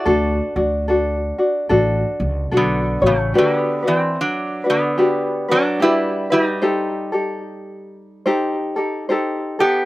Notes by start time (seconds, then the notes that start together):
Already playing: F#4 D5
0.05 D2 D4 F#4 A4
0.56 D2 D4 F#4
0.88 D4 F#4 A4
1.38 D4 F#4
1.69 A1 D4 F#4 A4
2.20 C#2
2.51 B1 D4 F#4 A4
2.57 D3 B3
3.02 A1 F#4 C#5
3.06 C#3 A3
3.34 D4 F#4 G4 B4
3.38 D3 A#3
3.56 B3
3.82 D4 F#4 B4
3.87 E3 C4
4.21 F#3 D4
4.64 D4 F#4 B4
4.70 D3 B3
4.98 D4 F#4 G4 B4
5.48 F#3 D4 F#4 B4
5.80 G3 D4 E4 F#4 G4 B4
6.30 G3 D#4 F#4 B4
6.62 D#4 G4 A4 C5
7.12 D#4 G4 A4
8.26 D#4 G4 A4 C5
8.76 D#4 G4 A4
9.09 D#4 G4 A4 C5
9.59 B3 D#4 G4 A4